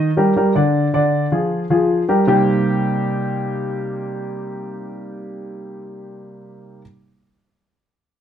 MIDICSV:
0, 0, Header, 1, 2, 480
1, 0, Start_track
1, 0, Key_signature, -3, "minor"
1, 0, Tempo, 383877
1, 927, Time_signature, 4, 2, 24, 8
1, 10258, End_track
2, 0, Start_track
2, 0, Title_t, "Grand piano"
2, 0, Program_c, 0, 0
2, 209, Note_on_c, 0, 55, 73
2, 215, Note_on_c, 0, 67, 76
2, 219, Note_on_c, 0, 70, 76
2, 405, Note_off_c, 0, 55, 0
2, 409, Note_off_c, 0, 67, 0
2, 411, Note_off_c, 0, 70, 0
2, 455, Note_on_c, 0, 55, 76
2, 457, Note_on_c, 0, 67, 74
2, 463, Note_on_c, 0, 70, 72
2, 649, Note_off_c, 0, 55, 0
2, 650, Note_off_c, 0, 67, 0
2, 653, Note_off_c, 0, 70, 0
2, 690, Note_on_c, 0, 50, 89
2, 696, Note_on_c, 0, 62, 89
2, 697, Note_on_c, 0, 74, 91
2, 1082, Note_off_c, 0, 50, 0
2, 1086, Note_off_c, 0, 62, 0
2, 1086, Note_off_c, 0, 74, 0
2, 1171, Note_on_c, 0, 50, 90
2, 1175, Note_on_c, 0, 62, 89
2, 1178, Note_on_c, 0, 74, 92
2, 1563, Note_off_c, 0, 50, 0
2, 1565, Note_off_c, 0, 62, 0
2, 1567, Note_off_c, 0, 74, 0
2, 1648, Note_on_c, 0, 53, 75
2, 1651, Note_on_c, 0, 65, 78
2, 1654, Note_on_c, 0, 68, 73
2, 2041, Note_off_c, 0, 53, 0
2, 2043, Note_off_c, 0, 65, 0
2, 2045, Note_off_c, 0, 68, 0
2, 2126, Note_on_c, 0, 53, 78
2, 2131, Note_on_c, 0, 65, 74
2, 2134, Note_on_c, 0, 68, 78
2, 2520, Note_off_c, 0, 53, 0
2, 2523, Note_off_c, 0, 65, 0
2, 2524, Note_off_c, 0, 68, 0
2, 2607, Note_on_c, 0, 55, 72
2, 2612, Note_on_c, 0, 67, 76
2, 2615, Note_on_c, 0, 70, 77
2, 2804, Note_off_c, 0, 55, 0
2, 2806, Note_off_c, 0, 67, 0
2, 2808, Note_off_c, 0, 70, 0
2, 2840, Note_on_c, 0, 48, 89
2, 2845, Note_on_c, 0, 55, 84
2, 2848, Note_on_c, 0, 58, 86
2, 2851, Note_on_c, 0, 60, 81
2, 2852, Note_on_c, 0, 63, 79
2, 2854, Note_on_c, 0, 67, 101
2, 8510, Note_off_c, 0, 48, 0
2, 8512, Note_off_c, 0, 55, 0
2, 8514, Note_off_c, 0, 58, 0
2, 8515, Note_off_c, 0, 60, 0
2, 8516, Note_off_c, 0, 63, 0
2, 8517, Note_off_c, 0, 67, 0
2, 10258, End_track
0, 0, End_of_file